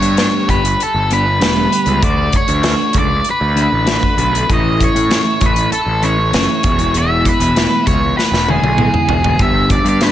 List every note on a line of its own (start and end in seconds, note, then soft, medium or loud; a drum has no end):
0.00 0.15 G2 medium
0.00 0.27 G2 medium
0.00 0.16 D3 medium
0.00 0.17 B3 medium
0.00 0.18 D4 medium
0.00 0.18 G4 medium
0.00 0.50 C#5 medium
0.00 closed hi-hat medium
0.05 0.17 G3 medium
0.16 0.79 G2 medium
0.16 0.79 D3 medium
0.16 0.48 G3 medium
0.16 0.49 B3 loud
0.16 0.50 D4 medium
0.16 0.50 G4 medium
0.16 snare loud
0.16 closed hi-hat medium
0.48 0.74 G1 medium
0.48 0.64 G3 medium
0.48 0.64 B3 medium
0.48 0.63 D4 medium
0.48 0.63 G4 medium
0.48 0.81 B4 medium
0.48 kick medium
0.48 closed hi-hat medium
0.64 muted clean electric guitar stroke soft
0.64 closed hi-hat medium
0.80 1.10 A4 medium
0.80 closed hi-hat medium
0.94 1.40 G1 medium
1.10 1.26 G3 medium
1.10 1.26 B3 medium
1.10 1.25 D4 medium
1.10 1.25 G4 medium
1.10 2.00 B4 medium
1.10 closed hi-hat medium
1.39 1.66 E1 medium
1.39 2.00 G2 medium
1.39 1.99 D3 medium
1.39 1.69 G3 medium
1.39 1.70 B3 medium
1.39 1.71 D4 medium
1.39 1.72 G4 medium
1.39 snare loud
1.39 closed hi-hat medium
1.70 1.87 G3 medium
1.70 1.87 B3 medium
1.70 1.85 D4 medium
1.70 1.85 G4 medium
1.70 closed hi-hat medium
1.86 2.03 C#2 medium
1.86 2.00 G3 medium
1.86 2.01 B3 medium
1.86 2.00 D4 medium
1.86 2.00 G4 medium
1.86 closed hi-hat soft
2.00 2.28 D2 medium
2.00 2.78 D3 medium
2.00 2.49 A3 medium
2.00 2.47 D4 medium
2.00 2.46 F#4 medium
2.00 kick medium
2.00 closed hi-hat medium
2.04 2.35 D5 medium
2.33 2.98 C#5 medium
2.33 kick medium
2.33 closed hi-hat medium
2.47 2.74 D2 medium
2.47 2.64 A3 medium
2.47 2.64 D4 medium
2.47 2.64 F#4 medium
2.47 closed hi-hat medium
2.63 2.93 A3 medium
2.63 2.94 D4 medium
2.63 2.94 F#4 medium
2.63 snare loud
2.63 closed hi-hat medium
2.93 3.20 C#2 medium
2.93 3.09 A3 medium
2.93 3.09 D4 medium
2.93 3.09 F#4 medium
2.93 kick medium
2.93 closed hi-hat medium
2.99 3.28 D5 medium
3.10 muted clean electric guitar stroke soft
3.25 closed hi-hat soft
3.31 3.60 B4 medium
3.41 3.66 D2 medium
3.55 3.83 D3 medium
3.55 3.70 A3 medium
3.55 3.71 D4 medium
3.55 3.70 F#4 medium
3.55 closed hi-hat medium
3.62 4.53 B4 medium
3.71 3.97 A1 medium
3.71 muted clean electric guitar stroke soft
3.84 4.15 D3 medium
3.84 4.16 A3 medium
3.84 4.17 D4 medium
3.84 4.18 F#4 medium
3.84 snare loud
3.84 closed hi-hat medium
4.03 kick medium
4.17 4.43 B1 medium
4.17 4.46 D3 medium
4.17 4.33 A3 medium
4.17 4.32 D4 medium
4.17 4.31 F#4 medium
4.17 closed hi-hat medium
4.32 4.47 A3 medium
4.32 4.47 D4 medium
4.32 4.46 F#4 medium
4.32 closed hi-hat medium
4.47 4.87 A1 loud
4.47 5.08 A2 medium
4.47 5.09 E3 loud
4.47 4.95 A3 loud
4.47 4.94 C#4 medium
4.47 4.93 E4 medium
4.47 kick medium
4.47 closed hi-hat soft
4.53 4.83 D#5 medium
4.80 5.45 C#5 medium
4.80 kick medium
4.80 closed hi-hat medium
4.94 5.20 A2 medium
4.94 5.09 A3 medium
4.94 5.09 C#4 medium
4.94 5.10 E4 medium
4.94 closed hi-hat medium
5.09 5.71 A2 medium
5.09 5.39 E3 medium
5.09 5.40 A3 medium
5.09 5.40 C#4 medium
5.09 5.42 E4 loud
5.09 snare medium
5.09 closed hi-hat soft
5.40 5.66 A1 medium
5.40 5.56 E3 medium
5.40 5.56 A3 medium
5.40 5.55 C#4 medium
5.40 5.55 E4 medium
5.40 kick medium
5.40 closed hi-hat medium
5.46 5.72 B4 medium
5.56 muted clean electric guitar stroke soft
5.56 closed hi-hat medium
5.72 6.03 A4 medium
5.72 closed hi-hat medium
5.86 6.35 A1 medium
6.02 6.17 E3 medium
6.02 6.17 A3 medium
6.02 6.16 C#4 medium
6.02 6.16 E4 medium
6.02 6.98 C#5 medium
6.02 closed hi-hat soft
6.18 muted clean electric guitar stroke soft
6.32 6.46 F#1 medium
6.32 6.61 A2 medium
6.32 6.62 E3 medium
6.32 6.62 A3 medium
6.32 6.63 C#4 medium
6.32 6.63 E4 medium
6.32 snare loud
6.32 closed hi-hat medium
6.63 7.26 E1 medium
6.63 6.92 E2 medium
6.63 6.93 B2 medium
6.63 6.80 E3 medium
6.63 6.79 G#3 medium
6.63 6.79 B3 medium
6.63 6.78 E4 medium
6.63 kick loud
6.63 closed hi-hat medium
6.79 6.93 E3 medium
6.79 6.94 G#3 medium
6.79 6.96 B3 medium
6.79 6.95 E4 medium
6.79 closed hi-hat medium
6.94 7.54 E2 medium
6.94 7.54 B2 medium
6.94 7.41 E3 medium
6.94 7.40 G#3 medium
6.94 7.40 B3 medium
6.94 7.39 E4 medium
6.94 closed hi-hat medium
6.98 7.28 E5 loud
7.25 7.87 B4 medium
7.25 kick medium
7.25 closed hi-hat medium
7.40 7.65 E1 medium
7.40 7.55 E3 medium
7.40 7.55 G#3 medium
7.40 7.57 B3 medium
7.40 7.56 E4 medium
7.40 closed hi-hat medium
7.55 8.17 E2 medium
7.55 8.17 B2 medium
7.55 7.85 E3 medium
7.55 7.86 G#3 medium
7.55 7.88 B3 medium
7.55 7.88 E4 medium
7.55 snare medium
7.55 closed hi-hat medium
7.86 8.12 C#2 medium
7.86 8.02 E3 medium
7.86 8.02 G#3 medium
7.86 8.01 B3 medium
7.86 8.01 E4 medium
7.86 8.15 C#5 medium
7.86 kick medium
7.86 closed hi-hat medium
8.02 muted clean electric guitar stroke soft
8.18 8.49 B4 medium
8.18 snare medium
8.31 8.57 E1 medium
8.31 snare soft
8.47 8.63 E3 medium
8.47 8.63 G#3 medium
8.47 8.63 B3 medium
8.47 8.62 E4 medium
8.47 9.44 G#4 medium
8.47 high tom medium
8.62 8.88 B1 medium
8.62 muted clean electric guitar stroke medium
8.62 high tom medium
8.77 9.37 E2 medium
8.77 9.37 B2 medium
8.77 9.07 E3 medium
8.77 9.08 G#3 medium
8.77 9.09 B3 medium
8.77 9.09 E4 medium
8.77 mid tom medium
8.94 mid tom medium
9.08 9.34 E1 medium
9.08 9.24 E3 medium
9.08 9.24 G#3 medium
9.08 9.23 B3 medium
9.08 9.22 E4 medium
9.08 floor tom medium
9.23 9.38 E3 soft
9.23 9.38 G#3 medium
9.23 9.38 B3 medium
9.23 9.37 E4 medium
9.23 floor tom medium
9.39 9.77 G1 medium
9.39 9.99 G2 medium
9.39 10.00 D3 medium
9.39 9.87 G3 loud
9.39 9.86 B3 medium
9.39 9.86 D4 medium
9.39 9.84 G4 medium
9.39 9.69 E5 loud
9.39 kick medium
9.39 closed hi-hat soft
9.70 9.85 D5 medium
9.70 kick medium
9.70 closed hi-hat soft
9.85 10.10 G2 medium
9.85 10.01 G3 medium
9.85 10.01 B3 soft
9.85 10.02 D4 medium
9.85 10.03 G4 medium
9.85 closed hi-hat medium
9.89 10.03 D5 medium
10.01 10.12 G2 medium
10.01 10.12 D3 medium
10.01 10.12 G3 medium
10.01 10.12 B3 medium
10.01 10.12 D4 loud
10.01 10.12 G4 medium
10.01 10.12 B4 medium
10.01 snare medium
10.01 closed hi-hat medium